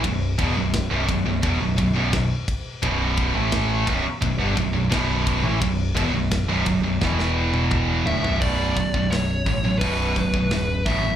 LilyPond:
<<
  \new Staff \with { instrumentName = "Lead electric guitar" } { \time 4/4 \key b \minor \tempo 4 = 86 r1 | r1 | r2. r8 e''8 | d''4 cis''4 b'4. e''8 | }
  \new Staff \with { instrumentName = "Distorted electric guitar" } { \clef bass \time 4/4 \key b \minor <b,, fis,>8 <e, b,>16 <b,, fis,>8 <b,, fis,>16 <b,, fis,>16 <b,, fis,>16 <e, b,>16 <b,, fis,>16 <b,, fis,>16 <b,, fis,>16 <b,, fis,>16 r8. | <b,, fis, b,>8. <a, e a>8. <b,, fis,>16 r16 <b,, fis,>16 <g, d>16 <b,, fis,>16 <b,, fis,>16 <b,, fis, b,>8. <a, e>16 | <b,, fis,>8 <e, b,>16 <b,, fis,>8 <b,, fis,>16 <b,, fis,>16 <b,, fis,>16 <e, b, e>4. <d, a,>16 <b,, fis,>16 | <b,, fis, b,>8 <b,, fis,>16 <b,, fis,>16 <b,, fis,>8 <b,, fis,>16 <b,, fis,>16 <b,, fis, b,>8 <b,, fis,>16 <b,, fis,>16 <b,, fis,>8 <b,, fis, b,>16 <b,, fis,>16 | }
  \new Staff \with { instrumentName = "Distorted electric guitar" } { \clef bass \time 4/4 \key b \minor <b,, fis,>8 <e, b,>16 <b,, fis,>8 <b,, fis,>16 <b,, fis,>16 <b,, fis,>16 <e, b,>16 <b,, fis,>16 <b,, fis,>16 <b,, fis,>16 <b,, fis,>16 r8. | <b,, fis, b,>8. <a, e a>8. <b,, fis,>16 r16 <b,, fis,>16 <g, d>16 <b,, fis,>16 <b,, fis,>16 <b,, fis, b,>8. <a, e>16 | <b,, fis,>8 <e, b,>16 <b,, fis,>8 <b,, fis,>16 <b,, fis,>16 <b,, fis,>16 <e, b, e>4. <d, a,>16 <b,, fis,>16 | <b,, fis, b,>8 <b,, fis,>16 <b,, fis,>16 <b,, fis,>8 <b,, fis,>16 <b,, fis,>16 <b,, fis, b,>8 <b,, fis,>16 <b,, fis,>16 <b,, fis,>8 <b,, fis, b,>16 <b,, fis,>16 | }
  \new Staff \with { instrumentName = "Picked electric bass" } { \clef bass \time 4/4 \key b \minor b,,,8 e,,16 b,,,8 b,,,16 b,,,16 b,,,16 e,,16 b,,,16 b,,,16 b,,,16 b,,,16 r8. | b,,,8. a,,8. b,,,16 r16 b,,,16 g,,16 b,,,16 b,,,16 b,,,8. a,,16 | b,,,8 e,,16 b,,,8 b,,,16 b,,,16 b,,,16 e,,4. d,,16 b,,,16 | b,,,4 b,,,8 a,,8 b,,,8 b,,,8 d,,8 a,,8 | }
  \new DrumStaff \with { instrumentName = "Drums" } \drummode { \time 4/4 <bd cymr>8 <bd cymr>8 <bd cymr sn>8 <bd cymr>8 <bd cymr>8 <bd cymr>8 <bd cymr sn>8 <bd cymr>8 | <bd cymr>8 <bd cymr>8 <bd cymr sn>8 <bd cymr>8 <bd cymr>8 <bd cymr>8 <bd cymr sn>8 <bd cymr>8 | <bd cymr>8 <bd cymr>8 <bd cymr sn>8 <bd cymr>8 <bd sn>16 sn8 tommh16 <bd toml>8 tomfh16 tomfh16 | <hho bd>8 <hho bd>16 bd16 <hho sn>8 <hho bd>8 <hho bd>8 <hho bd>16 bd16 <hho sn>8 <hho bd>8 | }
>>